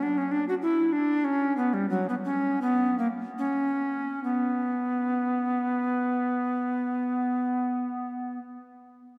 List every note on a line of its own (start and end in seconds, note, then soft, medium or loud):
0.03 0.19 D4 medium
0.18 0.33 C#4 medium
0.31 0.47 D4 medium
0.49 0.55 F#4 medium
0.62 0.94 E4 medium
0.93 1.26 D4 medium
1.24 1.57 C#4 medium
1.57 1.75 B3 medium
1.74 1.89 G3 medium
1.90 2.07 F#3 medium
2.09 2.15 B3 medium
2.25 2.60 C#4 medium
2.62 2.98 B3 medium
2.99 3.07 A#3 medium
3.38 4.23 C#4 medium
4.24 8.39 B3 medium